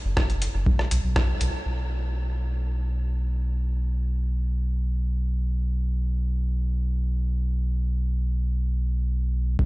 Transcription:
0, 0, Header, 1, 3, 480
1, 0, Start_track
1, 0, Tempo, 500000
1, 9269, End_track
2, 0, Start_track
2, 0, Title_t, "Sub bass"
2, 0, Program_c, 0, 38
2, 47, Note_on_c, 0, 30, 95
2, 461, Note_off_c, 0, 30, 0
2, 522, Note_on_c, 0, 30, 90
2, 683, Note_off_c, 0, 30, 0
2, 876, Note_on_c, 0, 35, 91
2, 960, Note_off_c, 0, 35, 0
2, 998, Note_on_c, 0, 35, 106
2, 1294, Note_off_c, 0, 35, 0
2, 1351, Note_on_c, 0, 35, 92
2, 1435, Note_off_c, 0, 35, 0
2, 1589, Note_on_c, 0, 35, 84
2, 9183, Note_off_c, 0, 35, 0
2, 9207, Note_on_c, 0, 35, 93
2, 9269, Note_off_c, 0, 35, 0
2, 9269, End_track
3, 0, Start_track
3, 0, Title_t, "Drums"
3, 162, Note_on_c, 9, 36, 112
3, 162, Note_on_c, 9, 37, 85
3, 258, Note_off_c, 9, 36, 0
3, 258, Note_off_c, 9, 37, 0
3, 285, Note_on_c, 9, 42, 33
3, 381, Note_off_c, 9, 42, 0
3, 401, Note_on_c, 9, 42, 70
3, 497, Note_off_c, 9, 42, 0
3, 638, Note_on_c, 9, 36, 118
3, 734, Note_off_c, 9, 36, 0
3, 761, Note_on_c, 9, 37, 36
3, 857, Note_off_c, 9, 37, 0
3, 876, Note_on_c, 9, 42, 77
3, 972, Note_off_c, 9, 42, 0
3, 1114, Note_on_c, 9, 36, 104
3, 1114, Note_on_c, 9, 37, 85
3, 1210, Note_off_c, 9, 36, 0
3, 1210, Note_off_c, 9, 37, 0
3, 1352, Note_on_c, 9, 42, 69
3, 1448, Note_off_c, 9, 42, 0
3, 9207, Note_on_c, 9, 36, 111
3, 9269, Note_off_c, 9, 36, 0
3, 9269, End_track
0, 0, End_of_file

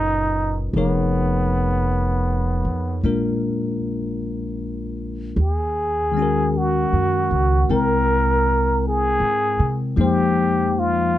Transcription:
0, 0, Header, 1, 4, 480
1, 0, Start_track
1, 0, Key_signature, -6, "minor"
1, 0, Tempo, 1153846
1, 307, Time_signature, 4, 2, 24, 8
1, 4652, End_track
2, 0, Start_track
2, 0, Title_t, "Muted trumpet"
2, 0, Program_c, 0, 59
2, 0, Note_on_c, 0, 63, 66
2, 244, Note_off_c, 0, 63, 0
2, 325, Note_on_c, 0, 59, 59
2, 1253, Note_off_c, 0, 59, 0
2, 2252, Note_on_c, 0, 68, 72
2, 2734, Note_on_c, 0, 66, 63
2, 2741, Note_off_c, 0, 68, 0
2, 3212, Note_on_c, 0, 70, 77
2, 3218, Note_off_c, 0, 66, 0
2, 3685, Note_off_c, 0, 70, 0
2, 3693, Note_on_c, 0, 68, 71
2, 4073, Note_off_c, 0, 68, 0
2, 4161, Note_on_c, 0, 67, 73
2, 4490, Note_on_c, 0, 65, 63
2, 4496, Note_off_c, 0, 67, 0
2, 4652, Note_off_c, 0, 65, 0
2, 4652, End_track
3, 0, Start_track
3, 0, Title_t, "Tine electric piano"
3, 0, Program_c, 1, 4
3, 0, Control_c, 1, 64, 127
3, 0, Note_on_c, 1, 46, 35
3, 0, Note_on_c, 1, 54, 38
3, 0, Note_on_c, 1, 61, 29
3, 0, Note_on_c, 1, 63, 37
3, 0, Note_on_c, 1, 65, 28
3, 0, Note_on_c, 1, 68, 37
3, 0, Note_on_c, 1, 70, 31
3, 0, Note_on_c, 1, 71, 37
3, 0, Note_on_c, 1, 73, 47
3, 308, Note_off_c, 1, 70, 0
3, 309, Note_off_c, 1, 54, 0
3, 310, Note_off_c, 1, 46, 0
3, 310, Note_off_c, 1, 61, 0
3, 311, Note_off_c, 1, 65, 0
3, 312, Note_off_c, 1, 68, 0
3, 312, Control_c, 1, 64, 0
3, 313, Note_off_c, 1, 63, 0
3, 313, Note_off_c, 1, 73, 0
3, 316, Note_off_c, 1, 71, 0
3, 317, Note_on_c, 1, 53, 38
3, 320, Note_on_c, 1, 70, 36
3, 321, Note_on_c, 1, 68, 37
3, 322, Note_on_c, 1, 63, 34
3, 324, Note_on_c, 1, 73, 41
3, 398, Control_c, 1, 64, 127
3, 1266, Note_off_c, 1, 53, 0
3, 1266, Control_c, 1, 64, 0
3, 1266, Note_on_c, 1, 56, 32
3, 1267, Note_off_c, 1, 70, 0
3, 1267, Note_on_c, 1, 62, 31
3, 1268, Note_off_c, 1, 63, 0
3, 1268, Note_off_c, 1, 68, 0
3, 1268, Note_on_c, 1, 65, 28
3, 1269, Note_on_c, 1, 58, 31
3, 1270, Note_off_c, 1, 73, 0
3, 1273, Note_on_c, 1, 70, 35
3, 1335, Control_c, 1, 64, 127
3, 2235, Note_off_c, 1, 56, 0
3, 2236, Note_off_c, 1, 62, 0
3, 2236, Note_off_c, 1, 65, 0
3, 2237, Note_off_c, 1, 58, 0
3, 2238, Control_c, 1, 64, 0
3, 2239, Note_off_c, 1, 70, 0
3, 2301, Control_c, 1, 64, 127
3, 2545, Note_on_c, 1, 51, 39
3, 2552, Note_on_c, 1, 56, 33
3, 2566, Note_on_c, 1, 61, 35
3, 2574, Note_on_c, 1, 66, 34
3, 2589, Note_on_c, 1, 70, 41
3, 3192, Note_off_c, 1, 51, 0
3, 3196, Note_off_c, 1, 56, 0
3, 3201, Note_on_c, 1, 56, 35
3, 3202, Note_off_c, 1, 70, 0
3, 3203, Note_off_c, 1, 61, 0
3, 3204, Note_on_c, 1, 64, 30
3, 3205, Control_c, 1, 64, 0
3, 3205, Note_on_c, 1, 60, 36
3, 3207, Note_off_c, 1, 66, 0
3, 3207, Note_on_c, 1, 70, 40
3, 3207, Note_on_c, 1, 79, 34
3, 3277, Control_c, 1, 64, 127
3, 4145, Note_on_c, 1, 53, 42
3, 4149, Note_on_c, 1, 58, 41
3, 4152, Note_on_c, 1, 63, 40
3, 4154, Note_off_c, 1, 56, 0
3, 4157, Note_off_c, 1, 64, 0
3, 4158, Note_off_c, 1, 60, 0
3, 4159, Note_off_c, 1, 70, 0
3, 4159, Note_off_c, 1, 79, 0
3, 4159, Note_on_c, 1, 56, 41
3, 4161, Control_c, 1, 64, 0
3, 4164, Note_on_c, 1, 72, 45
3, 4239, Control_c, 1, 64, 127
3, 4652, Note_off_c, 1, 53, 0
3, 4652, Note_off_c, 1, 56, 0
3, 4652, Note_off_c, 1, 58, 0
3, 4652, Note_off_c, 1, 63, 0
3, 4652, Note_off_c, 1, 72, 0
3, 4652, End_track
4, 0, Start_track
4, 0, Title_t, "Upright bass"
4, 0, Program_c, 2, 32
4, 0, Note_on_c, 2, 30, 58
4, 288, Note_off_c, 2, 30, 0
4, 305, Note_on_c, 2, 29, 54
4, 1088, Note_off_c, 2, 29, 0
4, 1101, Note_on_c, 2, 41, 46
4, 1248, Note_off_c, 2, 41, 0
4, 1263, Note_on_c, 2, 34, 52
4, 2217, Note_off_c, 2, 34, 0
4, 2231, Note_on_c, 2, 39, 54
4, 2861, Note_off_c, 2, 39, 0
4, 2882, Note_on_c, 2, 42, 41
4, 3030, Note_off_c, 2, 42, 0
4, 3040, Note_on_c, 2, 37, 47
4, 3189, Note_off_c, 2, 37, 0
4, 3201, Note_on_c, 2, 36, 56
4, 3822, Note_off_c, 2, 36, 0
4, 3827, Note_on_c, 2, 44, 43
4, 3980, Note_off_c, 2, 44, 0
4, 3992, Note_on_c, 2, 48, 50
4, 4141, Note_off_c, 2, 48, 0
4, 4147, Note_on_c, 2, 41, 57
4, 4652, Note_off_c, 2, 41, 0
4, 4652, End_track
0, 0, End_of_file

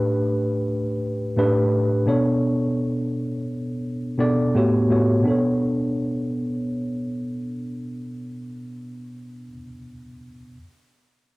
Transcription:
0, 0, Header, 1, 2, 480
1, 0, Start_track
1, 0, Key_signature, 2, "minor"
1, 0, Tempo, 705882
1, 1637, Time_signature, 4, 2, 24, 8
1, 7731, End_track
2, 0, Start_track
2, 0, Title_t, "Tine electric piano"
2, 0, Program_c, 0, 4
2, 0, Control_c, 0, 64, 127
2, 0, Note_on_c, 0, 45, 67
2, 0, Note_on_c, 0, 57, 65
2, 0, Note_on_c, 0, 62, 64
2, 0, Note_on_c, 0, 67, 74
2, 0, Note_on_c, 0, 71, 83
2, 370, Note_off_c, 0, 45, 0
2, 372, Note_off_c, 0, 57, 0
2, 377, Note_off_c, 0, 67, 0
2, 379, Note_off_c, 0, 71, 0
2, 396, Note_off_c, 0, 62, 0
2, 929, Note_on_c, 0, 45, 77
2, 933, Note_on_c, 0, 57, 66
2, 939, Note_on_c, 0, 62, 72
2, 942, Note_on_c, 0, 67, 69
2, 944, Note_on_c, 0, 71, 95
2, 1256, Note_off_c, 0, 45, 0
2, 1258, Note_off_c, 0, 57, 0
2, 1261, Note_off_c, 0, 62, 0
2, 1262, Note_off_c, 0, 67, 0
2, 1264, Note_off_c, 0, 71, 0
2, 1401, Note_on_c, 0, 47, 74
2, 1406, Control_c, 0, 64, 0
2, 1406, Note_on_c, 0, 59, 71
2, 1411, Note_on_c, 0, 62, 67
2, 1415, Note_on_c, 0, 69, 67
2, 1419, Note_on_c, 0, 73, 83
2, 1534, Control_c, 0, 64, 127
2, 2182, Note_off_c, 0, 47, 0
2, 2184, Note_off_c, 0, 59, 0
2, 2186, Note_off_c, 0, 62, 0
2, 2188, Note_off_c, 0, 69, 0
2, 2190, Note_off_c, 0, 73, 0
2, 2841, Note_on_c, 0, 47, 72
2, 2848, Note_on_c, 0, 59, 68
2, 2849, Note_on_c, 0, 62, 69
2, 2854, Note_on_c, 0, 69, 68
2, 2859, Note_on_c, 0, 74, 92
2, 3079, Note_off_c, 0, 47, 0
2, 3082, Note_off_c, 0, 59, 0
2, 3083, Note_off_c, 0, 62, 0
2, 3084, Control_c, 0, 64, 0
2, 3086, Note_off_c, 0, 69, 0
2, 3088, Note_off_c, 0, 74, 0
2, 3092, Note_on_c, 0, 45, 75
2, 3094, Note_on_c, 0, 57, 71
2, 3096, Note_on_c, 0, 59, 66
2, 3100, Note_on_c, 0, 66, 61
2, 3105, Note_on_c, 0, 67, 77
2, 3110, Note_on_c, 0, 73, 82
2, 3210, Control_c, 0, 64, 127
2, 3291, Note_off_c, 0, 45, 0
2, 3292, Note_off_c, 0, 57, 0
2, 3293, Note_off_c, 0, 59, 0
2, 3295, Note_off_c, 0, 66, 0
2, 3298, Note_off_c, 0, 67, 0
2, 3300, Note_off_c, 0, 73, 0
2, 3330, Note_on_c, 0, 45, 69
2, 3332, Note_on_c, 0, 57, 68
2, 3334, Note_on_c, 0, 59, 63
2, 3340, Note_on_c, 0, 66, 57
2, 3341, Note_on_c, 0, 67, 59
2, 3346, Note_on_c, 0, 73, 69
2, 3505, Note_off_c, 0, 45, 0
2, 3506, Note_off_c, 0, 57, 0
2, 3507, Note_off_c, 0, 59, 0
2, 3510, Note_off_c, 0, 66, 0
2, 3510, Note_off_c, 0, 67, 0
2, 3513, Note_off_c, 0, 73, 0
2, 3535, Note_on_c, 0, 47, 60
2, 3555, Note_on_c, 0, 59, 59
2, 3565, Control_c, 0, 64, 0
2, 3570, Note_on_c, 0, 62, 66
2, 3588, Note_on_c, 0, 69, 62
2, 3606, Note_on_c, 0, 73, 67
2, 3673, Control_c, 0, 64, 127
2, 6433, Note_off_c, 0, 47, 0
2, 6454, Note_off_c, 0, 59, 0
2, 6469, Note_off_c, 0, 62, 0
2, 6485, Note_off_c, 0, 69, 0
2, 6494, Note_off_c, 0, 73, 0
2, 7187, Control_c, 0, 64, 0
2, 7731, End_track
0, 0, End_of_file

